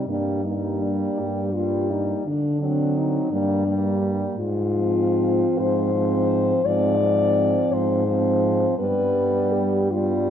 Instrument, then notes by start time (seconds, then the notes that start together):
french horn
0.08 G2 G3 A#3 D4
0.44 G3 A#3 D#4
0.82 D4
1.18 G2 G4
1.54 G3 A#3 F4
1.90 D#4
2.26 D3 D4
2.60 F#3 C4 D4
2.98 D#4
3.31 G2 G3 A#3 D4
3.66 G3 A#3
4.37 G#2 F4
4.76 F3 C4
5.58 G#2 C5
5.94 F3 C4
6.64 G#2 F3 C4 D5
6.99 F3 C4
7.72 G#2 C5
8.07 F3 C4
8.78 G2 G3 B3 B4
9.52 G4
9.92 G3 B3 F4